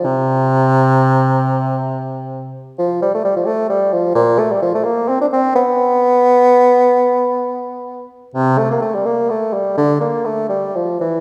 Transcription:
0, 0, Header, 1, 2, 480
1, 0, Start_track
1, 0, Tempo, 459770
1, 37, Time_signature, 12, 3, 24, 8
1, 7717, Tempo, 475813
1, 10117, Tempo, 496278
1, 11503, End_track
2, 0, Start_track
2, 0, Title_t, "Bassoon"
2, 0, Program_c, 0, 70
2, 52, Note_on_c, 0, 48, 97
2, 2673, Note_off_c, 0, 48, 0
2, 2906, Note_on_c, 0, 53, 99
2, 3128, Note_off_c, 0, 53, 0
2, 3149, Note_on_c, 0, 55, 84
2, 3263, Note_off_c, 0, 55, 0
2, 3282, Note_on_c, 0, 57, 79
2, 3382, Note_off_c, 0, 57, 0
2, 3388, Note_on_c, 0, 55, 85
2, 3501, Note_off_c, 0, 55, 0
2, 3511, Note_on_c, 0, 53, 75
2, 3614, Note_on_c, 0, 57, 96
2, 3629, Note_off_c, 0, 53, 0
2, 3849, Note_off_c, 0, 57, 0
2, 3855, Note_on_c, 0, 55, 91
2, 4096, Note_on_c, 0, 53, 89
2, 4111, Note_off_c, 0, 55, 0
2, 4324, Note_off_c, 0, 53, 0
2, 4330, Note_on_c, 0, 46, 107
2, 4581, Note_on_c, 0, 57, 94
2, 4596, Note_off_c, 0, 46, 0
2, 4715, Note_on_c, 0, 55, 78
2, 4731, Note_off_c, 0, 57, 0
2, 4817, Note_off_c, 0, 55, 0
2, 4823, Note_on_c, 0, 53, 93
2, 4943, Note_off_c, 0, 53, 0
2, 4956, Note_on_c, 0, 57, 82
2, 5056, Note_on_c, 0, 58, 87
2, 5072, Note_off_c, 0, 57, 0
2, 5309, Note_on_c, 0, 60, 98
2, 5325, Note_off_c, 0, 58, 0
2, 5435, Note_off_c, 0, 60, 0
2, 5439, Note_on_c, 0, 62, 95
2, 5494, Note_off_c, 0, 62, 0
2, 5559, Note_on_c, 0, 60, 92
2, 5790, Note_off_c, 0, 60, 0
2, 5796, Note_on_c, 0, 59, 113
2, 8387, Note_off_c, 0, 59, 0
2, 8664, Note_on_c, 0, 48, 102
2, 8915, Note_on_c, 0, 57, 94
2, 8930, Note_off_c, 0, 48, 0
2, 9034, Note_off_c, 0, 57, 0
2, 9045, Note_on_c, 0, 58, 82
2, 9152, Note_off_c, 0, 58, 0
2, 9158, Note_on_c, 0, 57, 88
2, 9287, Note_on_c, 0, 55, 88
2, 9302, Note_off_c, 0, 57, 0
2, 9396, Note_on_c, 0, 58, 104
2, 9411, Note_off_c, 0, 55, 0
2, 9639, Note_on_c, 0, 57, 83
2, 9654, Note_off_c, 0, 58, 0
2, 9877, Note_on_c, 0, 55, 89
2, 9893, Note_off_c, 0, 57, 0
2, 10111, Note_off_c, 0, 55, 0
2, 10117, Note_on_c, 0, 50, 108
2, 10340, Note_off_c, 0, 50, 0
2, 10346, Note_on_c, 0, 58, 74
2, 10583, Note_on_c, 0, 57, 87
2, 10598, Note_off_c, 0, 58, 0
2, 10807, Note_off_c, 0, 57, 0
2, 10813, Note_on_c, 0, 55, 83
2, 11068, Note_on_c, 0, 53, 79
2, 11083, Note_off_c, 0, 55, 0
2, 11305, Note_off_c, 0, 53, 0
2, 11310, Note_on_c, 0, 52, 72
2, 11503, Note_off_c, 0, 52, 0
2, 11503, End_track
0, 0, End_of_file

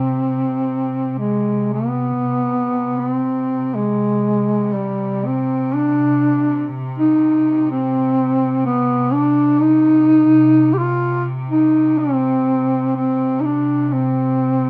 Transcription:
0, 0, Header, 1, 3, 480
1, 0, Start_track
1, 0, Key_signature, -3, "minor"
1, 0, Tempo, 1081081
1, 992, Time_signature, 4, 2, 24, 8
1, 993, Tempo, 1003344
1, 2913, Tempo, 963082
1, 7124, End_track
2, 0, Start_track
2, 0, Title_t, "Duduk"
2, 0, Program_c, 0, 69
2, 0, Note_on_c, 0, 60, 67
2, 524, Note_off_c, 0, 60, 0
2, 526, Note_on_c, 0, 56, 59
2, 748, Note_off_c, 0, 56, 0
2, 769, Note_on_c, 0, 59, 72
2, 1354, Note_on_c, 0, 60, 69
2, 1361, Note_off_c, 0, 59, 0
2, 1716, Note_on_c, 0, 56, 67
2, 1723, Note_off_c, 0, 60, 0
2, 2192, Note_on_c, 0, 55, 67
2, 2200, Note_off_c, 0, 56, 0
2, 2439, Note_on_c, 0, 60, 77
2, 2447, Note_off_c, 0, 55, 0
2, 2674, Note_on_c, 0, 62, 83
2, 2681, Note_off_c, 0, 60, 0
2, 3147, Note_off_c, 0, 62, 0
2, 3278, Note_on_c, 0, 63, 81
2, 3624, Note_off_c, 0, 63, 0
2, 3638, Note_on_c, 0, 60, 84
2, 4094, Note_off_c, 0, 60, 0
2, 4115, Note_on_c, 0, 59, 84
2, 4350, Note_on_c, 0, 62, 88
2, 4357, Note_off_c, 0, 59, 0
2, 4588, Note_on_c, 0, 63, 103
2, 4595, Note_off_c, 0, 62, 0
2, 5150, Note_on_c, 0, 67, 59
2, 5157, Note_off_c, 0, 63, 0
2, 5171, Note_on_c, 0, 65, 88
2, 5179, Note_off_c, 0, 67, 0
2, 5410, Note_off_c, 0, 65, 0
2, 5529, Note_on_c, 0, 63, 82
2, 5770, Note_on_c, 0, 60, 87
2, 5778, Note_off_c, 0, 63, 0
2, 6254, Note_off_c, 0, 60, 0
2, 6257, Note_on_c, 0, 60, 79
2, 6480, Note_on_c, 0, 63, 55
2, 6488, Note_off_c, 0, 60, 0
2, 6501, Note_on_c, 0, 62, 80
2, 6509, Note_off_c, 0, 63, 0
2, 6715, Note_off_c, 0, 62, 0
2, 6715, Note_on_c, 0, 62, 56
2, 6744, Note_on_c, 0, 60, 80
2, 6751, Note_off_c, 0, 62, 0
2, 7124, Note_off_c, 0, 60, 0
2, 7124, End_track
3, 0, Start_track
3, 0, Title_t, "Cello section"
3, 0, Program_c, 1, 48
3, 0, Note_on_c, 1, 48, 41
3, 986, Note_off_c, 1, 48, 0
3, 991, Note_on_c, 1, 48, 44
3, 7124, Note_off_c, 1, 48, 0
3, 7124, End_track
0, 0, End_of_file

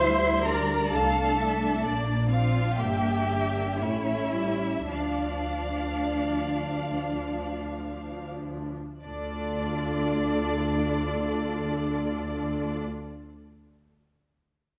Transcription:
0, 0, Header, 1, 6, 480
1, 0, Start_track
1, 0, Key_signature, -1, "minor"
1, 0, Tempo, 918836
1, 964, Time_signature, 3, 2, 24, 8
1, 1452, Tempo, 1015228
1, 1932, Tempo, 1129944
1, 2412, Tempo, 1282051
1, 2892, Tempo, 1379310
1, 3372, Tempo, 1463415
1, 3852, Tempo, 1382488
1, 4812, Tempo, 1408451
1, 5823, End_track
2, 0, Start_track
2, 0, Title_t, "Violin section"
2, 0, Program_c, 0, 48
2, 0, Note_on_c, 0, 84, 81
2, 239, Note_off_c, 0, 84, 0
2, 247, Note_on_c, 0, 82, 67
2, 483, Note_on_c, 0, 81, 60
2, 487, Note_off_c, 0, 82, 0
2, 960, Note_off_c, 0, 81, 0
2, 1201, Note_on_c, 0, 77, 55
2, 1433, Note_off_c, 0, 77, 0
2, 1448, Note_on_c, 0, 79, 57
2, 1930, Note_off_c, 0, 79, 0
2, 1939, Note_on_c, 0, 76, 52
2, 2406, Note_off_c, 0, 76, 0
2, 2416, Note_on_c, 0, 74, 43
2, 3374, Note_off_c, 0, 74, 0
2, 3849, Note_on_c, 0, 74, 45
2, 5141, Note_off_c, 0, 74, 0
2, 5823, End_track
3, 0, Start_track
3, 0, Title_t, "Violin section"
3, 0, Program_c, 1, 48
3, 8, Note_on_c, 1, 76, 65
3, 249, Note_on_c, 1, 74, 54
3, 251, Note_off_c, 1, 76, 0
3, 483, Note_on_c, 1, 77, 61
3, 488, Note_off_c, 1, 74, 0
3, 720, Note_on_c, 1, 76, 55
3, 724, Note_off_c, 1, 77, 0
3, 960, Note_off_c, 1, 76, 0
3, 960, Note_on_c, 1, 74, 52
3, 1197, Note_off_c, 1, 74, 0
3, 1205, Note_on_c, 1, 77, 57
3, 1448, Note_off_c, 1, 77, 0
3, 1449, Note_on_c, 1, 76, 53
3, 1930, Note_off_c, 1, 76, 0
3, 1932, Note_on_c, 1, 73, 47
3, 2156, Note_on_c, 1, 76, 45
3, 2163, Note_off_c, 1, 73, 0
3, 2409, Note_off_c, 1, 76, 0
3, 2412, Note_on_c, 1, 77, 48
3, 3600, Note_off_c, 1, 77, 0
3, 3848, Note_on_c, 1, 74, 44
3, 5140, Note_off_c, 1, 74, 0
3, 5823, End_track
4, 0, Start_track
4, 0, Title_t, "Cello section"
4, 0, Program_c, 2, 48
4, 0, Note_on_c, 2, 72, 97
4, 237, Note_off_c, 2, 72, 0
4, 249, Note_on_c, 2, 70, 76
4, 483, Note_off_c, 2, 70, 0
4, 488, Note_on_c, 2, 69, 72
4, 953, Note_off_c, 2, 69, 0
4, 1200, Note_on_c, 2, 65, 61
4, 1433, Note_off_c, 2, 65, 0
4, 1450, Note_on_c, 2, 67, 66
4, 1927, Note_on_c, 2, 64, 60
4, 1930, Note_off_c, 2, 67, 0
4, 2409, Note_on_c, 2, 62, 56
4, 2410, Note_off_c, 2, 64, 0
4, 3357, Note_off_c, 2, 62, 0
4, 3851, Note_on_c, 2, 62, 56
4, 5143, Note_off_c, 2, 62, 0
4, 5823, End_track
5, 0, Start_track
5, 0, Title_t, "Viola section"
5, 0, Program_c, 3, 48
5, 13, Note_on_c, 3, 55, 58
5, 15, Note_on_c, 3, 64, 62
5, 250, Note_off_c, 3, 64, 0
5, 256, Note_on_c, 3, 62, 51
5, 491, Note_off_c, 3, 55, 0
5, 493, Note_on_c, 3, 57, 56
5, 965, Note_off_c, 3, 57, 0
5, 967, Note_on_c, 3, 58, 51
5, 1205, Note_off_c, 3, 58, 0
5, 1205, Note_on_c, 3, 60, 55
5, 1448, Note_off_c, 3, 60, 0
5, 1450, Note_off_c, 3, 62, 0
5, 1455, Note_on_c, 3, 62, 48
5, 1457, Note_on_c, 3, 58, 49
5, 1685, Note_off_c, 3, 58, 0
5, 1691, Note_on_c, 3, 58, 43
5, 1924, Note_off_c, 3, 62, 0
5, 1928, Note_off_c, 3, 58, 0
5, 1936, Note_on_c, 3, 57, 47
5, 1936, Note_on_c, 3, 61, 45
5, 2165, Note_off_c, 3, 57, 0
5, 2167, Note_on_c, 3, 55, 44
5, 2409, Note_off_c, 3, 55, 0
5, 2413, Note_on_c, 3, 53, 39
5, 2413, Note_on_c, 3, 62, 38
5, 2414, Note_off_c, 3, 61, 0
5, 3738, Note_off_c, 3, 53, 0
5, 3738, Note_off_c, 3, 62, 0
5, 3850, Note_on_c, 3, 65, 39
5, 3850, Note_on_c, 3, 69, 41
5, 5141, Note_off_c, 3, 69, 0
5, 5142, Note_off_c, 3, 65, 0
5, 5823, End_track
6, 0, Start_track
6, 0, Title_t, "Double bass section"
6, 0, Program_c, 4, 48
6, 0, Note_on_c, 4, 38, 69
6, 470, Note_off_c, 4, 38, 0
6, 487, Note_on_c, 4, 36, 53
6, 952, Note_off_c, 4, 36, 0
6, 961, Note_on_c, 4, 34, 58
6, 1450, Note_off_c, 4, 34, 0
6, 1450, Note_on_c, 4, 31, 49
6, 1929, Note_on_c, 4, 33, 48
6, 1931, Note_off_c, 4, 31, 0
6, 2411, Note_off_c, 4, 33, 0
6, 2412, Note_on_c, 4, 38, 45
6, 3737, Note_off_c, 4, 38, 0
6, 3849, Note_on_c, 4, 38, 53
6, 5140, Note_off_c, 4, 38, 0
6, 5823, End_track
0, 0, End_of_file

